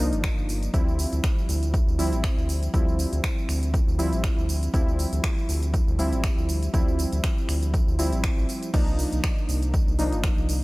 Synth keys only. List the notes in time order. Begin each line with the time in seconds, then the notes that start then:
0.00 F3 A#3 D4 D#4
0.74 F3 G3 C4 E4
1.99 F3 G3 C4 E4
2.74 F3 G3 C4 E4
3.99 F3 G3 C4 E4
4.74 F3 G3 C4 E4
5.99 F3 G3 C4 E4
6.74 F3 G3 C4 E4
7.99 F3 G3 C4 E4
8.74 F3 A#3 D4 D#4
9.99 F3 A#3 D4 D#4